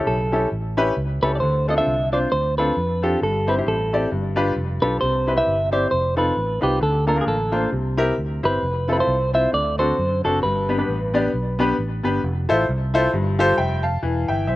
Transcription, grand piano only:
Already playing: C#3 C#4 E4 G4 A4
0.32 C#4 E4 G4 A4
0.77 C#4 E4 G4 B4
1.22 C#4 E4 G4 A4
1.42 D3
1.68 C4 D4 F4 A4
1.77 C4 D4 F4 A4
2.12 C4 D4 F4 C5
2.58 C4 D4 F4 A4
3.02 C4 D4 F4 A4
3.22 G2
3.47 C4 E4 G4 C5
3.58 C4 E4 G4 C5
3.93 C4 E4 G4 D5
4.11 G2
4.36 D4 F4 G4 B4
4.82 D4 F4 G4 A4
5.01 C3
5.26 C4 E4 G4 B4
5.36 C4 E4 G4 B4
5.71 C4 E4 G4 C5
6.16 C4 D#4 F4 A4
6.61 C4 D#4 F4 B4
6.81 D3
7.07 A#3 D4 F4 A4
7.16 A#3 D4 F4 A#4
7.52 A#3 D4 F4 C5
7.72 C3
7.97 C4 E4 G4 A#4
8.43 C4 E4 G4 C5
8.88 C4 E4 F4 A4
8.97 C4 E4 F4 A4
9.33 C4 E4 F4 C5
9.52 D3
9.78 C4 D4 F#4 A4
10.24 C4 D4 F#4 A4
10.43 G2
10.69 B3 D4 G4 B4
10.78 B3 D4 G4 B4
11.14 B3 D4 G4 D5
11.59 B3 D4 G4 B4
12.03 B3 D4 G4 B4
12.49 E4 F4 A4 C5
12.94 E4 F4 A4 C5
13.13 G2
13.39 F4 G4 A4 C5
13.58 E5 G5
13.83 F5 A5
14.03 E3
14.28 E5 G5
14.47 C5 E5

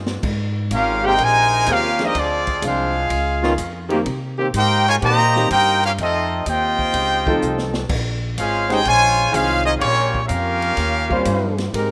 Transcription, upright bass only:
Already playing: G2
0.23 G#2
0.71 G#1
1.19 A#1
1.67 D#2
2.15 D2
2.62 C2
3.10 C#2
3.58 F2
4.06 C3
4.54 G#2
5.02 A#2
5.50 G2
5.98 F2
6.46 D#2
6.94 C#2
7.42 C2
7.89 A#1
8.38 G#1
8.85 A#1
9.33 C2
9.81 A#1
10.30 F2
10.77 D#2
11.26 G2
11.74 G#2

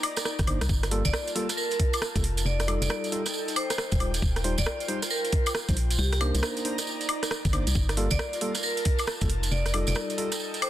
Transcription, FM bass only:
0.39 G1
0.47 G1
0.61 C2
0.69 G1
1.05 G1
2.16 F1
2.45 F1
2.82 F1
3.92 D#1
4.22 D#1
4.58 D#1
5.69 A#1
5.99 C2
6.35 C2
7.45 G1
7.53 G1
7.67 C2
7.75 G1
8.11 G1
9.21 F1
9.52 F1
9.88 F1

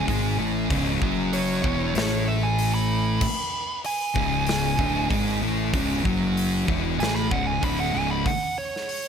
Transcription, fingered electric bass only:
0.08 G#1
0.39 A1
0.71 C#1
1.02 F#1
1.64 E1
1.96 A1
4.16 C#1
4.79 D1
5.11 G#1
5.41 A1
5.73 C#1
6.06 F#1
6.68 E1
7.00 A1
7.32 C#1
7.63 D1
7.94 C#1

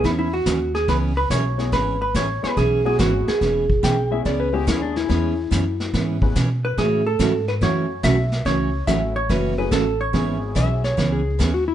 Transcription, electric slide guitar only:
3.84 G5
4.12 E5
4.26 D5
4.40 B4
4.54 G4
4.68 E4
4.82 D4
4.97 E4
10.56 E5
10.84 C#5
11.12 G#4
11.54 F#4
11.68 E4

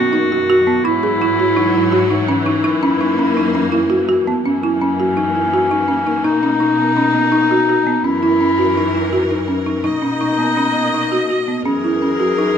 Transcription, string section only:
Already playing: F#2 B2 D#3 A#3
0.86 G#2 E3 F#3
2.64 F#2 A#3
4.46 F#2 E3 A#3
6.25 B2 D#4
8.04 F#2 E3 A#4
9.85 B2 A#3 D#5
11.64 F#2 E3 A#4

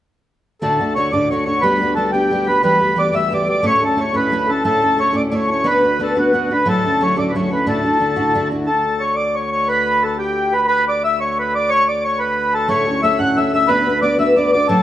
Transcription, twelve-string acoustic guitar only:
0.62 D2 A2 D3 A3 D4 F#4
0.80 D3 A3 D4 F#4
0.96 D3 A3 D4 F#4
1.12 D2 A2 D3 A3 D4 F#4
1.31 D3 A3 D4 F#4
1.46 D3 A3 D4 F#4
1.63 G3 B3 D4 G4
1.81 B3 D4 G4
1.97 G3 B3 D4 G4
2.14 G3 B3 D4 G4
2.31 G3 B3 D4 G4
2.47 B3 D4 G4
2.63 E3 G3 B3 G4
2.80 G3 B3 G4
2.96 E3 G3 B3 G4
3.12 E3 G3 B3 G4
3.31 E3 G3 B3 G4
3.46 G3 B3 G4
3.63 A2 A3 C#4 E4 A4
3.82 C#4 E4 A4
3.97 A3 C#4 E4 A4
4.13 A2 A3 C#4 E4 A4
4.32 A3 C#4 E4 A4
4.47 C#4 E4 A4
4.64 A2 A3 C#4 E4 A4
4.82 C#4 E4 A4
4.96 A3 C#4 E4 A4
5.13 A2 A3 C#4 E4 A4
5.31 A3 C#4 E4 A4
5.48 C#4 E4 A4
5.64 B3 D4 F#4 B4
5.83 D4 F#4 B4
5.99 B3 D4 F#4 B4
6.15 B3 D4 F#4 B4
6.33 B3 D4 F#4 B4
6.50 D4 F#4 B4
6.65 A2 F#3 C#4 E4 A4
6.84 C#4 E4 A4
7.00 F#3 C#4 E4 A4
7.16 A2 F#3 C#4 E4 A4
7.35 F#3 C#4 E4 A4
7.50 C#4 E4 A4
7.66 D2 A2 D3 D4 E4 F#4
7.84 D3 D4 E4 F#4
8.00 D3 D4 E4 F#4
8.16 D2 A2 D3 D4 E4 F#4
8.34 D3 D4 E4 F#4
8.51 D3 D4 E4 F#4
12.68 A2 A3 C#4 E4 A4
12.87 C#4 E4 A4
13.03 A3 C#4 E4 A4
13.19 A2 A3 C#4 E4 A4
13.37 A3 C#4 E4 A4
13.53 C#4 E4 A4
13.68 B3 D4 F#4 B4
13.86 D4 F#4 B4
14.02 B3 D4 F#4 B4
14.18 B3 D4 F#4 B4
14.36 B3 D4 F#4 B4
14.53 D4 F#4 B4
14.69 A2 F#3 C#4 E4 A4

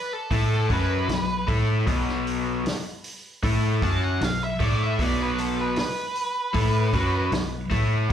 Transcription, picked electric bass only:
0.31 A2
0.70 F#2
1.08 B1
1.49 A2
1.87 B1
2.65 muted picked electric bass stroke
3.44 A2
3.82 F#2
4.21 B1
4.60 A2
4.99 B1
5.77 muted picked electric bass stroke
6.54 A2
6.93 F#2
7.31 B1
7.71 A2

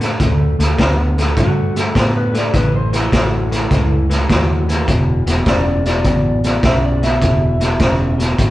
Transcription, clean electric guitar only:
0.00 D3 A3
0.20 D3 A3
0.60 D3 A3
0.78 D3 B3
1.18 D3 A3
1.38 D3 A3
1.76 D3 A3
1.95 D3 B3
2.34 D3 A3
2.54 A2 E3
2.93 A2 E3
3.12 A2 F#3
3.52 A2 E3
3.70 A2 E3
4.10 A2 E3
4.29 A2 F#3
4.69 A2 E3
4.87 E2 B2
5.27 E2 B2
5.47 E2 C#3
5.86 E2 B2
6.04 E2 B2
6.44 E2 B2
6.63 E2 C#3
7.02 E2 B2
7.22 E2 B2
7.60 E2 B2
7.80 E2 C#3
8.19 E2 B2
8.38 E2 B2

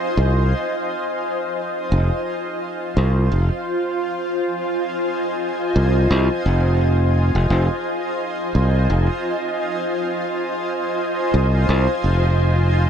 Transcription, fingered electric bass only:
0.17 C2
1.92 F1
2.97 C2
3.32 F1
5.76 C2
6.11 C2
6.46 F1
7.35 F1
7.50 F1
8.55 C2
8.90 F1
11.34 C2
11.69 C2
12.04 F1

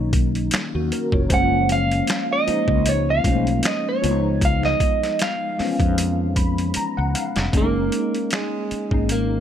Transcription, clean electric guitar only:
Already playing: C#5
1.34 F#5
1.72 F5
2.33 D#5
2.89 C#5
3.10 F5
3.67 D#5
3.89 C#5
4.45 F5
4.65 D#5
5.22 F5
7.57 A#3
8.35 G#3
9.12 A#3

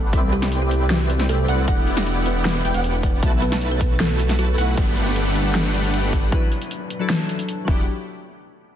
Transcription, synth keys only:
4.76 G3 B3 A4 F#5
5.43 G3 B3 A4 F#5
6.30 F#3 D4 E4
6.34 B4
6.99 F#3 D4 E4 A4
7.65 F#3 D4
7.69 E4 G4

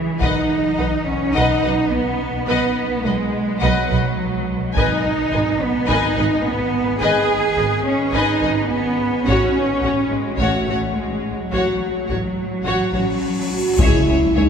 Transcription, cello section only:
Already playing: E3
0.20 D#4
1.06 C#4
1.35 D#4
1.91 B3
2.48 B3
3.05 G#3
3.62 F#3
4.76 D#4
5.61 B3
5.88 D#4
6.45 B3
7.01 G#4
7.85 C#4
8.13 D#4
8.70 B3
9.27 C#4
10.11 G#3
10.40 A3
10.97 G#3
11.53 F#3
13.79 C#2
14.08 C#2
14.36 C#2

